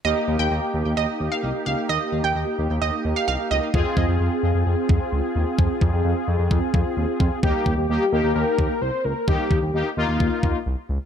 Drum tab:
BD |--------|--------|oo---o--|oo--oo-o|

BD |oo---o--|oo--oo--|